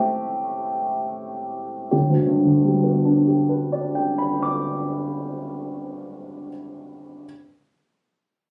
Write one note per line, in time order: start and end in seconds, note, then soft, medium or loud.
0.00 1.95 A2 soft
0.00 1.88 A3 soft
0.00 1.88 C4 soft
0.00 1.88 E4 soft
0.00 1.90 G4 medium
0.00 1.95 A4 medium
1.91 6.49 G1 soft
1.91 3.26 G4 soft
2.10 6.49 D2 soft
2.26 6.49 G2 soft
2.45 6.49 D3 soft
2.64 6.49 G3 soft
2.84 6.48 B3 soft
3.05 6.49 D4 soft
3.27 6.49 G4 soft
3.49 6.49 B4 soft
3.72 6.50 D5 soft
3.95 6.49 G5 soft
4.18 6.49 B5 soft
4.42 6.49 D6 soft